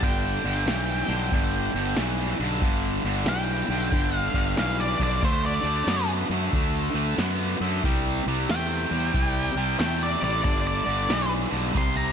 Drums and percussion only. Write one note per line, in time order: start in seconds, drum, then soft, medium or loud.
0.03 kick loud
0.03 ride loud
0.45 ride medium
0.67 snare loud
0.67 ride loud
1.10 snare soft
1.10 ride medium
1.31 kick loud
1.31 ride medium
1.74 ride medium
1.96 snare loud
1.96 ride medium
2.38 ride medium
2.60 kick loud
2.60 ride medium
3.02 ride medium
3.25 snare loud
3.25 ride medium
3.67 ride medium
3.91 kick loud
3.91 ride medium
4.34 kick medium
4.34 ride medium
4.57 snare loud
4.57 ride medium
4.99 kick medium
4.99 ride medium
5.22 kick loud
5.22 ride loud
5.64 ride medium
5.87 snare loud
5.87 ride loud
6.30 snare soft
6.30 ride medium
6.53 kick loud
6.53 ride loud
6.95 ride medium
7.18 snare loud
7.18 ride medium
7.61 ride medium
7.84 kick loud
7.84 ride loud
8.27 ride medium
8.49 snare loud
8.49 ride medium
8.91 ride medium
9.14 kick loud
9.14 ride medium
9.58 ride medium
9.80 snare loud
9.80 ride medium
10.23 ride medium
10.44 kick loud
10.44 ride medium
10.87 ride medium
11.09 snare loud
11.09 ride loud
11.52 snare soft
11.52 ride medium
11.75 kick loud
11.75 ride loud